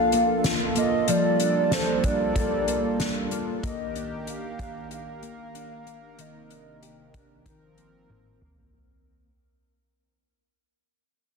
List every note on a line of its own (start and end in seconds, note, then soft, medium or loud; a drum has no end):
0.00 1.08 F3 medium
0.00 1.04 A#3 medium
0.00 1.40 D4 medium
0.00 3.59 F4 medium
0.00 1.72 A4 medium
0.00 3.59 A4 medium
0.00 0.41 F5 medium
0.12 0.76 A#3 soft
0.12 closed hi-hat soft
0.44 snare medium
0.44 closed hi-hat medium
0.76 1.75 A#3 medium
0.76 1.11 D#5 loud
0.76 closed hi-hat soft
1.08 3.63 F3 medium
1.08 3.61 G3 medium
1.08 3.60 A#3 medium
1.08 1.75 D5 loud
1.08 closed hi-hat medium
1.40 2.04 D4 medium
1.40 closed hi-hat soft
1.71 2.35 A4 medium
1.71 2.06 C5 medium
1.71 snare medium
1.71 closed hi-hat medium
2.04 2.99 D4 medium
2.04 3.32 D5 loud
2.04 kick medium
2.04 closed hi-hat soft
2.36 3.70 A4 medium
2.36 kick medium
2.36 closed hi-hat medium
2.68 3.31 A#3 medium
2.68 closed hi-hat soft
3.00 3.94 D4 soft
3.00 snare medium
3.00 closed hi-hat medium
3.31 3.63 A#3 medium
3.31 closed hi-hat soft
3.63 6.16 D#3 medium
3.63 5.22 A#3 medium
3.63 7.42 A#3 medium
3.63 6.16 G4 medium
3.63 7.42 A#4 medium
3.63 4.24 D#5 medium
3.63 kick medium
3.63 closed hi-hat medium
3.95 4.58 D4 medium
3.95 closed hi-hat soft
4.27 4.90 G4 medium
4.27 4.88 F5 loud
4.27 closed hi-hat medium
4.59 5.53 D4 soft
4.59 kick medium
4.59 closed hi-hat soft
4.90 6.24 G4 medium
4.90 6.22 F5 loud
4.90 closed hi-hat medium
5.22 5.86 A#3 soft
5.22 closed hi-hat soft
5.54 6.25 D4 soft
5.54 closed hi-hat medium
5.86 7.77 A#3 soft
5.86 closed hi-hat soft
6.18 7.45 C3 medium
6.18 8.71 D#3 medium
6.18 7.46 D#3 medium
6.18 7.15 D#5 medium
6.18 closed hi-hat medium
6.50 7.13 D4 soft
6.50 closed hi-hat soft
6.82 7.52 G4 medium
6.82 closed hi-hat medium
7.14 7.52 D4 soft
7.14 kick medium
7.14 closed hi-hat soft
7.46 9.30 D#3 medium
7.46 8.72 F3 medium
7.46 8.72 C4 medium
7.46 8.72 A#4 medium
7.46 8.38 A#4 medium
7.46 kick medium
7.46 closed hi-hat medium
7.78 8.41 A#3 soft
7.78 closed hi-hat soft
8.10 9.30 C4 soft
8.10 high tom soft
8.41 9.30 A#3 soft
8.41 mid tom medium
8.58 floor tom medium